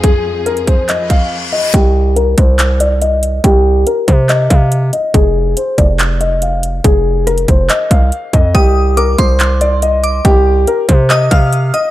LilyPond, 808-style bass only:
\new Staff \with { instrumentName = "808-style bass" } { \clef bass \time 4/4 \key c \minor \tempo 4 = 141 r1 | c,4. c,2~ c,8 | c,4 r8 c4 c4 r8 | f,,4 r8 f,,2~ f,,8 |
f,,4. f,,8 r8 c,8 r8 f,8 | c,4. c,2~ c,8 | c,4 r8 c4 c4 r8 | }